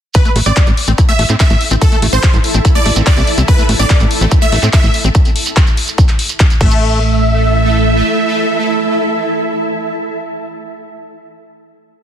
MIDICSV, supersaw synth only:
0, 0, Header, 1, 2, 480
1, 0, Start_track
1, 0, Key_signature, 0, "minor"
1, 0, Tempo, 416667
1, 172, Time_signature, 4, 2, 24, 8
1, 13859, End_track
2, 0, Start_track
2, 0, Title_t, "Supersaw synth"
2, 0, Program_c, 0, 81
2, 172, Note_on_c, 0, 71, 102
2, 363, Note_off_c, 0, 71, 0
2, 531, Note_on_c, 0, 74, 90
2, 786, Note_off_c, 0, 74, 0
2, 1251, Note_on_c, 0, 76, 95
2, 1443, Note_off_c, 0, 76, 0
2, 1611, Note_on_c, 0, 76, 94
2, 1866, Note_off_c, 0, 76, 0
2, 2091, Note_on_c, 0, 69, 100
2, 2283, Note_off_c, 0, 69, 0
2, 2451, Note_on_c, 0, 72, 97
2, 2707, Note_off_c, 0, 72, 0
2, 3172, Note_on_c, 0, 74, 91
2, 3363, Note_off_c, 0, 74, 0
2, 3531, Note_on_c, 0, 74, 96
2, 3787, Note_off_c, 0, 74, 0
2, 4011, Note_on_c, 0, 71, 102
2, 4202, Note_off_c, 0, 71, 0
2, 4371, Note_on_c, 0, 74, 94
2, 4626, Note_off_c, 0, 74, 0
2, 5091, Note_on_c, 0, 76, 94
2, 5282, Note_off_c, 0, 76, 0
2, 5451, Note_on_c, 0, 76, 98
2, 5706, Note_off_c, 0, 76, 0
2, 7612, Note_on_c, 0, 76, 108
2, 11784, Note_off_c, 0, 76, 0
2, 13859, End_track
0, 0, End_of_file